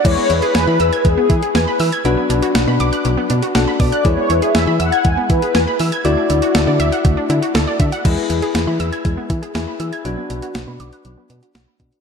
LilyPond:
<<
  \new Staff \with { instrumentName = "Analog polysynth" } { \time 4/4 \key e \mixolydian \tempo 4 = 120 cis''8 b'4. gis'4 b'8. r16 | r2. r8 d''8 | cis''8 b'16 e''8. fis''8 gis''8 b'4 r8 | r1 |
r1 | r1 | }
  \new Staff \with { instrumentName = "Synth pluck" } { \time 4/4 \key e \mixolydian gis16 b16 e'16 gis'16 gis''16 b''16 e'''16 gis'''16 gis16 b16 e'16 gis'16 gis''16 b''16 e'''16 gis'''16 | fis16 b16 d'16 fis'16 fis''16 b''16 d'''16 fis'''16 fis16 b16 d'16 fis'16 fis''16 b''16 d'''16 fis'''16 | gis16 b16 e'16 gis'16 gis''16 b''16 e'''16 gis'''16 gis16 b16 e'16 gis'16 gis''16 b''16 e'''16 gis'''16 | a16 d'16 e'16 fis'16 a'16 d''16 e''16 fis''16 a16 d'16 e'16 fis'16 a'16 d''16 e''16 fis''16 |
gis16 b16 e'16 gis'16 gis''16 b''16 e'''16 gis'''16 gis16 b16 e'16 gis'16 gis''16 b''16 e'''16 gis'''16 | fis16 b16 d'16 fis'16 fis''16 b''16 d'''16 fis'''16 fis16 b16 d'16 fis'16 fis''16 b''16 d'''16 r16 | }
  \new Staff \with { instrumentName = "Synth keys" } { \time 4/4 \key e \mixolydian <e' gis' b'>1 | <d' fis' b'>2. <d' fis' a'>4 | <e' gis' b'>1 | <e' fis' d''>1 |
<e' gis' b'>2. <e' gis' b'>4 | <d' fis' b'>2.~ <d' fis' b'>8 <d' fis' b'>8 | }
  \new Staff \with { instrumentName = "FM bass" } { \clef bass \time 4/4 \key e \mixolydian e,16 r16 e,16 r16 e,16 e16 e,16 r16 e,16 r16 e16 r16 e,16 r16 e16 r16 | b,,16 r16 b,,16 r16 b,,16 b,16 b,,16 r16 b,,16 r16 b,16 r16 b,,16 r16 b,16 r16 | e,16 r16 e,16 r16 e,16 e16 e,16 r16 e,16 r16 e16 r16 e,16 r16 e16 r16 | d,16 r16 d,16 r16 d,16 d16 d,16 r16 d,16 r16 d16 r16 d,16 r16 d16 r16 |
e,16 r16 e,16 r16 e,16 e16 e,16 r16 e,16 r16 e16 r16 e,16 r16 e16 r16 | b,,16 r16 b,,16 r16 b,,16 b,16 b,,16 r16 b,,16 r16 b,16 r16 b,,16 r16 b,16 r16 | }
  \new DrumStaff \with { instrumentName = "Drums" } \drummode { \time 4/4 <cymc hh bd>8 hh16 hh16 <hh sn>8 hh16 hh16 <hh bd>8 <hh bd>16 hh16 <hh sn>8 hho16 hh16 | hh8 hh16 hh16 <hh sn>8 hh16 hh16 hh8 hh16 hh16 <hh sn>8 <hho bd>16 hh16 | <hh bd>8 hh16 hh16 <hh sn>8 hh16 hh16 <hh bd>8 <hh bd>16 hh16 <hh sn>8 hho16 hh16 | hh8 hh16 hh16 <hh sn>8 hh16 hh16 <hh bd>8 hh16 hh16 <hh sn>8 <hh bd>16 hh16 |
<cymc hh bd>8 hh16 hh16 <hh sn>8 hh16 hh16 <hh bd>8 <hh bd>16 hh16 <hh sn>8 hh16 hh16 | hh8 hh16 hh16 <hh sn>8 hh16 hh16 hh8 hh16 hh16 <hh sn>8 <hh bd>16 hh16 | }
>>